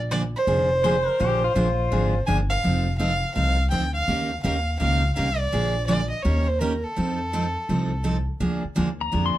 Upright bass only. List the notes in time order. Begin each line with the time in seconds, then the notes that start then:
Already playing: A#1
0.47 F1
1.21 A#1
1.56 A#1
1.92 G#1
2.28 G1
2.65 F1
3.37 C2
3.73 D2
4.08 D#2
4.44 D#2
4.81 C#2
5.18 C2
5.54 A#1
6.25 D#2
6.98 F2
7.69 C2
8.40 D2
8.64 muted upright bass stroke
8.78 D#2
9.14 F2